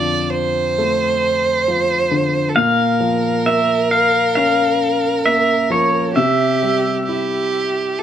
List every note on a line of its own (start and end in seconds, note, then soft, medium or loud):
0.00 2.51 F2 medium
0.00 1.17 D3 medium
0.00 1.62 F3 medium
0.00 0.31 D5 medium
0.00 0.28 A5 medium
0.30 2.50 C5 medium
0.78 2.53 A3 medium
1.68 2.54 F3 soft
2.11 2.54 D3 soft
2.49 2.57 A4 medium
2.55 6.13 A#2 medium
2.55 6.13 A#4 medium
2.55 3.42 F5 medium
3.00 4.77 F3 soft
3.46 5.22 A#3 medium
3.46 3.91 E5 medium
3.91 4.34 F5 medium
4.35 6.12 C#4 medium
4.35 5.22 F5 medium
5.26 6.14 A#3 soft
5.26 5.72 E5 medium
5.70 6.14 F3 soft
5.70 6.15 C#5 medium
6.14 8.03 C3 medium
6.14 7.02 G4 medium
6.14 8.03 E5 medium
6.63 8.03 G3 soft
7.06 8.03 E4 soft
7.06 8.01 G4 medium
7.99 8.03 G4 medium
7.99 8.03 A4 medium